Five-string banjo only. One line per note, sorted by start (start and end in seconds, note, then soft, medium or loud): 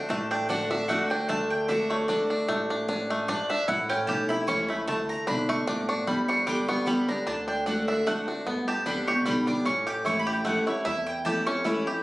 0.00 0.31 D4 medium
0.10 0.89 A3 medium
0.31 0.49 D4 medium
0.50 0.70 D4 medium
0.71 1.11 D4 medium
0.89 1.29 A3 medium
1.11 1.69 D4 medium
1.29 1.90 A3 medium
1.69 2.08 D4 medium
1.90 2.48 A3 medium
2.09 2.29 D4 medium
2.30 2.69 D4 medium
2.48 3.10 A3 medium
2.70 2.88 D4 medium
2.89 3.28 D4 medium
3.10 4.12 A3 medium
3.29 3.49 D4 medium
3.50 3.68 D4 medium
3.68 4.25 E4 medium
3.90 4.44 C#4 medium
4.09 4.66 G4 medium
4.30 4.85 E4 medium
4.49 4.88 C#4 medium
4.70 4.87 A3 medium
4.88 5.45 A3 medium
5.27 5.66 D4 medium
5.49 6.04 A3 medium
5.67 5.88 D4 medium
5.89 6.07 D4 medium
6.07 6.46 G3 medium
6.29 7.08 D4 medium
6.47 6.86 G3 medium
6.69 7.23 B3 medium
6.87 7.27 G3 medium
7.09 7.27 D4 medium
7.27 7.47 D4 medium
7.48 7.65 D4 medium
7.66 7.87 D4 medium
7.88 8.27 D4 medium
8.07 8.47 A3 medium
8.28 8.47 D4 medium
8.47 9.04 B3 medium
8.68 9.07 G4 medium
8.86 9.43 D4 medium
9.08 9.63 G4 medium
9.26 9.66 G3 medium
9.47 9.66 D4 medium
9.65 10.23 C#4 medium
9.87 10.25 G4 medium
10.05 10.62 E4 medium
10.27 10.82 G4 medium
10.45 11.02 A3 medium
10.67 10.84 E4 medium
10.85 11.42 E4 medium
11.26 11.83 G4 medium
11.47 12.01 C#4 medium
11.65 12.03 E4 medium
11.87 12.03 G4 medium